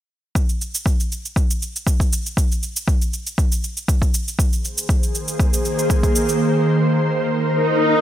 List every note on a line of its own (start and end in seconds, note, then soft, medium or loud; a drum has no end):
0.35 kick loud
0.35 cabasa medium
0.49 cabasa soft
0.61 cabasa soft
0.75 cabasa medium
0.86 kick loud
0.86 cabasa soft
1.00 cabasa soft
1.12 cabasa soft
1.25 cabasa soft
1.36 kick loud
1.36 cabasa soft
1.51 cabasa medium
1.62 cabasa soft
1.76 cabasa soft
1.87 kick loud
1.87 cabasa medium
2.00 kick medium
2.00 cabasa soft
2.13 cabasa medium
2.26 cabasa soft
2.37 kick loud
2.37 cabasa medium
2.52 cabasa soft
2.63 cabasa soft
2.76 cabasa medium
2.88 kick loud
2.88 cabasa soft
3.02 cabasa medium
3.13 cabasa soft
3.27 cabasa medium
3.38 kick loud
3.38 cabasa medium
3.52 cabasa medium
3.64 cabasa medium
3.77 cabasa medium
3.88 kick loud
3.88 cabasa medium
4.02 kick medium
4.02 cabasa soft
4.14 cabasa medium
4.28 cabasa soft
4.38 8.01 D#3 medium
4.38 8.01 A#3 medium
4.38 6.38 G#4 medium
4.38 8.01 C5 medium
4.38 kick loud
4.38 cabasa medium
4.53 cabasa soft
4.65 cabasa soft
4.78 cabasa medium
4.89 kick loud
4.89 cabasa medium
5.03 cabasa medium
5.15 cabasa medium
5.28 cabasa medium
5.40 kick loud
5.40 cabasa medium
5.53 cabasa medium
5.65 cabasa medium
5.79 cabasa medium
5.90 kick loud
5.90 cabasa medium
6.03 kick medium
6.03 cabasa soft
6.16 cabasa loud
6.29 cabasa medium
6.41 8.01 A#4 medium
7.41 swell medium